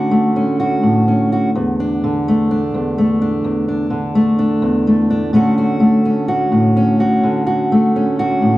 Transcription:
0.00 2.02 D3 medium
0.00 0.11 A3 medium
0.00 0.35 C#4 medium
0.00 0.58 F#4 medium
0.11 2.28 A3 medium
0.36 1.07 C#4 medium
0.60 1.31 F#4 medium
0.83 1.54 A2 medium
1.08 1.49 C#4 medium
1.32 1.50 F#4 medium
1.55 2.73 E2 medium
1.80 2.51 D4 medium
2.04 3.89 D3 medium
2.28 2.98 A3 medium
2.51 3.21 D4 medium
2.74 3.43 E2 medium
2.98 4.15 A3 soft
3.22 3.68 D4 medium
3.44 4.61 E2 medium
3.68 4.38 D4 medium
3.90 5.32 D3 medium
4.15 4.87 A3 medium
4.39 5.10 D4 medium
4.62 5.33 E2 medium
4.87 5.33 A3 medium
5.10 5.35 D4 medium
5.33 7.22 D3 medium
5.33 5.79 A3 medium
5.33 6.04 C#4 medium
5.33 5.57 F#4 medium
5.58 6.27 F#4 medium
5.80 7.72 A3 medium
6.05 6.75 C#4 medium
6.28 6.99 F#4 medium
6.52 7.24 A2 medium
6.77 7.95 C#4 medium
7.00 7.45 F#4 medium
7.23 8.58 D3 medium
7.47 8.18 F#4 medium
7.72 8.58 A3 medium
7.96 8.58 C#4 medium
8.19 8.58 F#4 medium
8.42 8.58 A2 medium

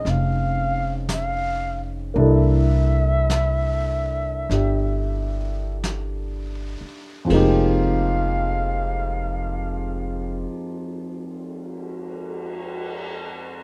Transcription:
0.00 2.15 C4 soft
0.00 2.16 C#4 soft
0.00 2.17 D#4 soft
0.00 2.17 G#4 soft
0.00 0.12 D#5 medium
0.05 2.11 F1 medium
0.05 brush sweep soft
0.05 snare soft
0.10 0.97 F5 medium
1.09 brush sweep soft
1.09 snare soft
1.09 hi-hat pedal medium
1.14 1.95 F5 medium
2.14 4.46 C2 medium
2.14 7.29 A#3 soft
2.14 4.48 D4 soft
2.14 7.30 E4 soft
2.14 brush sweep soft
2.19 7.31 A4 medium
2.19 5.82 E5 medium
3.30 brush sweep soft
3.30 snare soft
3.30 hi-hat pedal soft
4.49 6.77 G1 medium
4.49 7.29 D4 soft
4.49 7.31 G4 soft
4.49 brush sweep soft
4.49 snare soft
5.84 brush sweep soft
5.84 snare soft
5.84 hi-hat pedal soft
6.81 muted upright bass stroke soft
7.25 10.42 F2 medium
7.25 10.44 F3 soft
7.29 10.44 F1 medium
7.29 10.46 G#3 soft
7.29 10.49 A#3 soft
7.29 kick soft
7.29 ride soft
7.34 10.51 D#4 soft
7.34 10.53 G4 medium
7.34 10.47 F5 medium
8.33 cymbal swell soft

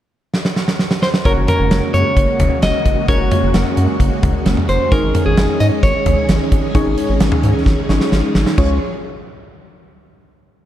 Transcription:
0.34 snare medium
0.45 snare medium
0.56 snare medium
0.68 snare medium
0.79 snare medium
0.91 snare medium
1.02 1.09 C5 medium
1.02 snare medium
1.14 snare loud
1.25 1.35 F#1 loud
1.25 4.88 C#3 medium
1.25 8.54 G#3 medium
1.25 4.88 A#3 medium
1.25 3.05 C#4 medium
1.25 4.88 F#4 medium
1.25 3.05 F#4 medium
1.25 3.05 A#4 medium
1.25 1.32 A#4 medium
1.25 3.05 C#5 medium
1.25 kick loud
1.25 closed hi-hat medium
1.37 1.47 F#1 loud
1.48 1.93 A#4 medium
1.48 closed hi-hat medium
1.48 mid tom medium
1.60 1.70 F#1 loud
1.71 1.81 F#1 loud
1.71 snare loud
1.71 closed hi-hat medium
1.94 2.04 F#2 loud
1.94 2.62 C#5 medium
1.94 closed hi-hat medium
2.17 2.27 F#1 loud
2.17 kick medium
2.17 closed hi-hat medium
2.40 2.50 F#1 loud
2.40 closed hi-hat medium
2.40 mid tom loud
2.62 2.73 F#1 loud
2.62 3.08 D#5 loud
2.62 snare loud
2.62 closed hi-hat medium
2.86 2.96 F#1 loud
2.86 kick medium
2.86 closed hi-hat medium
3.08 3.19 F#1 loud
3.08 4.88 C#4 medium
3.08 4.88 F#4 medium
3.08 4.88 A#4 medium
3.08 4.88 C#5 medium
3.08 3.51 C#5 medium
3.08 kick loud
3.08 closed hi-hat medium
3.20 3.30 F#1 medium
3.31 closed hi-hat medium
3.31 mid tom medium
3.43 3.53 F#1 medium
3.54 3.65 F#1 loud
3.54 snare loud
3.54 closed hi-hat medium
3.77 3.87 F#2 loud
3.77 closed hi-hat medium
4.00 4.10 F#1 loud
4.00 kick medium
4.00 closed hi-hat medium
4.23 4.33 F#1 loud
4.23 kick medium
4.23 closed hi-hat medium
4.23 mid tom medium
4.46 4.56 F#1 loud
4.46 snare loud
4.46 closed hi-hat medium
4.57 mid tom medium
4.69 4.79 F#1 loud
4.69 4.92 C5 medium
4.69 closed hi-hat medium
4.92 5.02 G#1 loud
4.92 8.54 D#3 medium
4.92 8.54 C#4 medium
4.92 6.71 C#4 medium
4.92 6.71 D#4 medium
4.92 6.71 G#4 medium
4.92 8.55 G#4 medium
4.92 5.24 A#4 medium
4.92 6.71 C#5 medium
4.92 kick loud
4.92 closed hi-hat medium
5.03 5.13 G#1 loud
5.15 closed hi-hat medium
5.15 mid tom medium
5.26 5.36 G#1 medium
5.26 5.58 G#4 medium
5.37 5.48 G#1 loud
5.37 snare loud
5.37 closed hi-hat medium
5.60 5.71 G#2 loud
5.60 5.67 D#5 loud
5.60 closed hi-hat medium
5.83 5.93 G#1 loud
5.83 8.08 C#5 medium
5.83 kick loud
5.83 closed hi-hat medium
6.06 6.16 G#1 loud
6.06 closed hi-hat medium
6.06 mid tom loud
6.29 6.39 G#1 loud
6.29 snare loud
6.29 closed hi-hat medium
6.52 6.62 G#1 loud
6.52 kick loud
6.52 closed hi-hat medium
6.75 6.85 G#1 loud
6.75 7.87 C#4 medium
6.75 7.87 D#4 medium
6.75 7.87 G#4 medium
6.75 7.87 C#5 medium
6.75 kick loud
6.75 closed hi-hat medium
6.86 6.96 G#1 loud
6.98 closed hi-hat medium
7.09 7.19 G#1 loud
7.20 7.31 G#1 loud
7.20 snare loud
7.20 closed hi-hat medium
7.32 mid tom loud
7.43 7.54 G#2 loud
7.43 closed hi-hat medium
7.66 7.76 G#1 loud
7.66 kick loud
7.66 snare medium
7.89 7.99 G#1 loud
7.89 8.57 C#4 medium
7.89 8.58 D#4 medium
7.89 8.57 G#4 medium
7.89 8.57 C#5 medium
7.89 snare medium
8.01 snare medium
8.12 8.22 G#1 medium
8.12 snare medium
8.35 8.45 G#1 loud
8.35 snare loud
8.46 snare medium
8.58 8.79 C#2 loud
8.58 8.79 F3 medium
8.58 8.80 G#3 medium
8.58 8.79 C#4 medium
8.58 8.80 C#4 medium
8.58 8.79 F4 medium
8.58 8.79 G#4 medium
8.58 8.79 C#5 medium
8.58 kick loud
8.58 crash medium

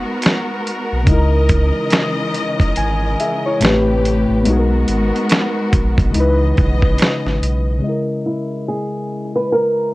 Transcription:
0.00 1.03 G#3 medium
0.00 1.04 G#3 medium
0.00 1.04 B3 medium
0.00 1.05 B3 medium
0.00 1.04 D#4 medium
0.00 1.04 F#4 medium
0.00 1.05 F#4 medium
0.00 1.06 A#4 medium
0.00 3.57 A#4 medium
0.22 finger snap medium
0.22 snare loud
0.22 closed hi-hat medium
0.67 closed hi-hat medium
0.92 1.07 B1 medium
1.03 1.72 C#2 loud
1.03 3.55 C#3 medium
1.03 3.56 G#3 medium
1.03 kick loud
1.03 closed hi-hat medium
1.08 3.59 C#3 medium
1.08 3.59 E3 medium
1.08 2.73 D#4 medium
1.08 2.75 E4 medium
1.08 3.59 D#5 medium
1.13 2.76 A#4 medium
1.49 kick medium
1.49 closed hi-hat medium
1.90 finger snap medium
1.90 snare loud
1.90 closed hi-hat medium
2.34 closed hi-hat medium
2.60 kick medium
2.60 closed hi-hat soft
2.76 3.16 G#1 loud
2.76 3.17 G#5 medium
2.76 closed hi-hat medium
3.20 3.44 G#4 medium
3.20 3.44 E5 medium
3.20 closed hi-hat medium
3.46 3.86 E4 medium
3.46 3.85 C#5 medium
3.60 4.26 A1 loud
3.60 4.45 A2 medium
3.60 4.45 C3 medium
3.60 4.45 A3 medium
3.60 4.46 C4 medium
3.60 4.45 G4 medium
3.60 4.47 G4 medium
3.60 4.45 B4 medium
3.60 finger snap medium
3.60 closed hi-hat medium
3.65 4.47 B4 medium
3.65 snare loud
4.05 closed hi-hat medium
4.30 4.44 A1 medium
4.42 6.11 G#3 medium
4.42 6.13 G#3 medium
4.42 6.09 B3 medium
4.42 6.13 B3 medium
4.42 6.13 F#4 medium
4.42 6.13 A#4 medium
4.42 closed hi-hat medium
4.46 4.85 B1 loud
4.46 6.12 D#4 medium
4.46 6.13 F#4 medium
4.52 4.57 G#4 medium
4.59 6.18 A#4 medium
4.88 5.12 G#1 loud
4.88 closed hi-hat medium
5.16 closed hi-hat soft
5.29 finger snap medium
5.29 snare loud
5.29 closed hi-hat medium
5.73 6.12 A#1 loud
5.73 kick medium
5.73 closed hi-hat medium
5.98 kick medium
5.98 closed hi-hat soft
6.10 7.77 C#3 medium
6.10 7.79 G#3 medium
6.14 6.54 C#2 loud
6.14 7.82 C#3 medium
6.14 7.82 E3 medium
6.14 7.82 B3 medium
6.14 7.80 D#4 medium
6.14 7.82 E4 medium
6.14 7.82 D#5 medium
6.14 closed hi-hat medium
6.20 7.83 B4 medium
6.57 6.82 B1 loud
6.57 kick medium
6.57 closed hi-hat medium
6.82 6.98 A#1 medium
6.82 kick medium
6.98 finger snap medium
6.98 snare loud
6.98 closed hi-hat medium
7.26 7.40 G#1 medium
7.26 snare soft
7.42 7.80 B1 medium
7.42 closed hi-hat medium
7.79 9.94 C#3 medium
7.79 9.94 G#3 medium
7.84 9.94 E4 medium
7.84 9.94 D#5 medium
7.89 9.94 A#4 medium
8.26 8.68 E4 medium
8.68 9.35 G#4 medium
9.36 9.52 B4 medium
9.52 9.94 A#4 medium

